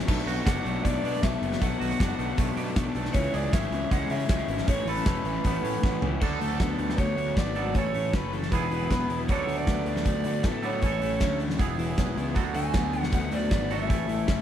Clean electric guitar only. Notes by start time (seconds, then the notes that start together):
0.07 A3
0.27 F#4
0.46 D4
0.65 A3
0.85 A3
1.04 D4
1.23 A3
1.42 A3
1.61 A3
1.80 F#4
2.00 D4
2.19 A3
2.38 A3
2.57 D4
2.76 A3
2.95 A3
3.15 E3
3.34 G#4
3.53 C#4
3.72 E3
3.91 G#3
4.11 C#4
4.30 G#3
4.49 E3
4.69 E3
4.89 A4
5.06 C#4
5.26 E3
5.46 B3
5.64 C#4
5.84 B3
6.02 E3
6.21 F#3 B3 D4 A4
7.56 F#3 B3 D4 A4
7.76 C#4 E4 A4
8.52 B3 E4 G#4
9.29 F#3 B3 D4 A4
10.63 F#3 B3 D4 A4
10.83 C#4 E4 A4
11.59 B3 E4 G#4
12.34 F#3 B3 F#4 A4
13.71 F#3 B3 F#4 A4
13.88 C#4 E4 A4